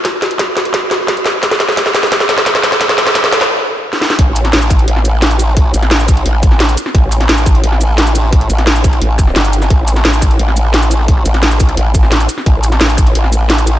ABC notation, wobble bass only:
X:1
M:4/4
L:1/8
Q:1/4=174
K:Gdor
V:1 name="Wobble bass" clef=bass
z8 | z8 | z8 | A,,,2 A,,,2 A,,,4- |
A,,, A,,,3 A,,,3 z | A,,,2 A,,,2 A,,,4- | A,,, A,,,3 A,,,2 G,,,2 | A,,,2 A,,,2 A,,,4- |
A,,, A,,,3 A,,,3 z | A,,,2 A,,,2 A,,,4 |]